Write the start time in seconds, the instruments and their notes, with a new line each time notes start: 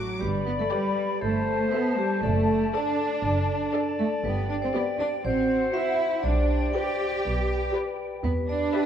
Already playing: cello section F#3, vibraphone F#4, violin section D6
0.20 double bass section G1, cello section G3, vibraphone G4, french horn section B4 D5, clarinet D5, flute section B5
0.45 cello section B3, vibraphone B4
0.59 cello section A3, vibraphone A4
0.70 cello section G3, vibraphone G4, viola section B4, violin section D5 G5
1.21 double bass section G1, cello section A3, vibraphone A4, french horn section A4 C5, clarinet C5, flute section A5
1.72 cello section B3, viola section A4, vibraphone B4, violin section C5 E5
1.98 cello section G3, vibraphone G4
2.23 double bass section F#1, cello section A3, vibraphone A4, clarinet D5, french horn section D5
2.74 cello section D4, viola section A4, violin section D5, vibraphone D5
3.24 double bass section F#1
3.74 viola section A4, violin section D5
3.99 cello section A3, vibraphone A4
4.24 double bass section G1, cello section B3, french horn section G4, vibraphone B4, flute section G5
4.49 cello section D4, vibraphone D5
4.62 cello section C4, vibraphone C5
4.74 cello section B3, viola section G4, vibraphone B4, violin section D5
4.99 cello section D4, vibraphone D5
5.25 double bass section A1, cello section C4, french horn section F#4 C5, vibraphone C5, clarinet C5, flute section F#5
5.74 cello section E4, viola section F#4, violin section C5 F#5, vibraphone E5
6.23 double bass section B1, cello section D4, french horn section G4, vibraphone D5, clarinet D5, flute section G5
6.73 cello section G4, viola section G4, violin section B4 D5, vibraphone G5
7.25 double bass section B1, french horn section B4
7.74 viola section G4, violin section B4 D5
8.24 double bass section E2, cello section B3, vibraphone B4
8.49 cello section D4, vibraphone D5
8.73 viola section G4, clarinet B4, violin section B4 E5, flute section G5